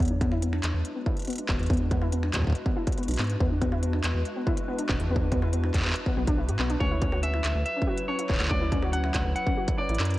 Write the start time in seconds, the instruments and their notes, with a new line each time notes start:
0.00 analog synth bass E2, ambient pad G#3 D4 F#4 B4, closed hi-hat
0.05 closed hi-hat
0.08 synth arpeggio sound D4, closed hi-hat
0.21 synth arpeggio sound B3, finger snap, kick, closed hi-hat
0.32 synth arpeggio sound E4, finger snap
0.42 synth arpeggio sound B3, closed hi-hat
0.53 synth arpeggio sound D4, finger snap
0.64 analog synth bass E2, clap, closed hi-hat
0.74 analog synth bass E2
0.85 closed hi-hat
0.96 synth arpeggio sound B3
1.06 synth arpeggio sound E4, kick
1.17 closed hi-hat
1.19 closed hi-hat
1.22 closed hi-hat
1.25 closed hi-hat
1.27 synth arpeggio sound B3, closed hi-hat
1.30 closed hi-hat
1.33 closed hi-hat
1.35 closed hi-hat
1.38 synth arpeggio sound D4, closed hi-hat
1.49 analog synth bass E1, synth arpeggio sound B3, kick, clap
1.59 analog synth bass E2, closed hi-hat
1.63 closed hi-hat
1.66 closed hi-hat
1.70 analog synth bass E2, synth arpeggio sound B3, kick, closed hi-hat
1.74 closed hi-hat
1.77 synth arpeggio sound D4, closed hi-hat
1.91 synth arpeggio sound B3, finger snap, kick, closed hi-hat
2.02 synth arpeggio sound E4, finger snap
2.12 synth arpeggio sound B3, closed hi-hat
2.23 synth arpeggio sound D4, finger snap
2.34 analog synth bass E2, kick, clap, closed hi-hat
2.37 kick
2.39 kick
2.42 analog synth bass E2, kick
2.45 kick
2.47 kick
2.50 kick
2.53 kick, closed hi-hat
2.66 synth arpeggio sound B3, kick
2.77 synth arpeggio sound E4
2.87 kick, closed hi-hat
2.92 closed hi-hat
2.98 synth arpeggio sound B3, closed hi-hat
3.03 closed hi-hat
3.08 analog synth bass B1, synth arpeggio sound D4, closed hi-hat
3.11 closed hi-hat
3.13 closed hi-hat
3.16 clap, closed hi-hat
3.19 analog synth bass G#2, synth arpeggio sound B3, closed hi-hat
3.21 closed hi-hat
3.24 closed hi-hat
3.27 closed hi-hat
3.29 closed hi-hat
3.40 analog synth bass E2, synth arpeggio sound B3, kick
3.51 synth arpeggio sound D4
3.61 synth arpeggio sound B3, finger snap, kick, closed hi-hat
3.72 synth arpeggio sound E4, finger snap
3.83 synth arpeggio sound B3, closed hi-hat
3.93 synth arpeggio sound D4, finger snap
4.04 analog synth bass E2, clap, closed hi-hat
4.15 analog synth bass E2
4.25 closed hi-hat
4.36 synth arpeggio sound B3
4.47 synth arpeggio sound E4, kick
4.57 closed hi-hat
4.68 synth arpeggio sound B3
4.78 synth arpeggio sound D4, closed hi-hat
4.89 analog synth bass E1, synth arpeggio sound B3, kick, clap
5.00 analog synth bass E2, closed hi-hat
5.10 analog synth bass E2, synth arpeggio sound B3
5.16 kick
5.21 synth arpeggio sound D4
5.32 synth arpeggio sound B3, finger snap, kick, closed hi-hat
5.42 synth arpeggio sound E4, finger snap
5.53 synth arpeggio sound B3, closed hi-hat
5.64 synth arpeggio sound D4, finger snap
5.74 analog synth bass E2, kick, clap, closed hi-hat
5.77 clap
5.80 clap
5.82 clap
5.85 analog synth bass E2, clap
5.87 clap
5.90 clap
5.93 clap, closed hi-hat
6.06 synth arpeggio sound B3, kick
6.17 analog synth bass B1, synth arpeggio sound B3
6.27 synth arpeggio sound D4, kick, closed hi-hat
6.38 synth arpeggio sound E4
6.49 analog synth bass G#2, synth arpeggio sound F#4, closed hi-hat
6.59 analog synth bass B1, synth arpeggio sound B3, clap
6.70 synth arpeggio sound D4, closed hi-hat
6.81 analog synth bass D2, ambient pad F#3 E4, synth arpeggio sound C#4, clean electric guitar C#5, kick
6.91 synth arpeggio sound E4
7.02 synth arpeggio sound C#4, finger snap, kick, closed hi-hat
7.12 synth arpeggio sound F#4, finger snap
7.23 synth arpeggio sound C#4, clean electric guitar E5, closed hi-hat
7.34 synth arpeggio sound E4, finger snap
7.44 analog synth bass D2, clap, closed hi-hat
7.55 analog synth bass D2
7.66 clean electric guitar E5, closed hi-hat
7.77 synth arpeggio sound C#4
7.82 kick
7.87 synth arpeggio sound F#4
7.98 closed hi-hat
8.08 synth arpeggio sound C#4, clean electric guitar C#5
8.19 synth arpeggio sound E4, closed hi-hat
8.30 analog synth bass D1, synth arpeggio sound C#4, kick, clap
8.32 clap
8.35 clap
8.38 clap
8.40 analog synth bass D2, clap, closed hi-hat, struck metal
8.43 clap
8.46 clap
8.48 analog synth bass D2, synth arpeggio sound C#4, clean electric guitar D5, kick, clap
8.62 synth arpeggio sound E4
8.72 synth arpeggio sound C#4, finger snap, kick, closed hi-hat
8.83 synth arpeggio sound F#4, finger snap
8.93 synth arpeggio sound C#4, clean electric guitar F#5, closed hi-hat
9.04 synth arpeggio sound E4, finger snap
9.15 analog synth bass D2, kick, clap, closed hi-hat
9.25 analog synth bass D2
9.36 clean electric guitar F#5, closed hi-hat
9.47 synth arpeggio sound C#4, kick
9.57 synth arpeggio sound F#4
9.68 kick, closed hi-hat
9.78 synth arpeggio sound C#4, clean electric guitar D5
9.89 analog synth bass A1, synth arpeggio sound E4, closed hi-hat
9.94 closed hi-hat
10.00 analog synth bass F#2, synth arpeggio sound C#4, clap, closed hi-hat
10.05 closed hi-hat
10.10 closed hi-hat
10.14 closed hi-hat